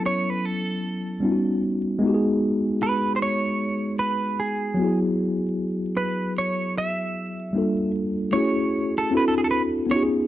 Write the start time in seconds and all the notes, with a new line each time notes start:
Already playing: F#3 B3 C#4 E4 A4
0.06 C#5
0.30 B4
0.45 A4
1.20 G3 B3 C#4
1.24 D#4 F4
1.32 F#4
1.99 G#3 B3
2.03 D#4 F#4
2.08 G4
2.14 G#4
2.83 B4
3.16 C5
3.22 C#5
3.99 B4
4.40 G#4
4.74 F#3 B3
4.79 E4 F#4
4.84 G#4
5.97 B4
6.38 C#5
6.78 E5
7.53 G3 A#3 D4 F4
7.58 A4
8.32 A3 C#4 E4 F#4 C#5
8.37 G#4
8.98 A4
9.11 C4 D4 E4 F#4
9.15 A4 B4
9.28 A4
9.38 G#4
9.44 A4
9.51 B4
9.87 B3 C#4
9.91 D#4 F4 C#5
9.96 G4
10.03 G#4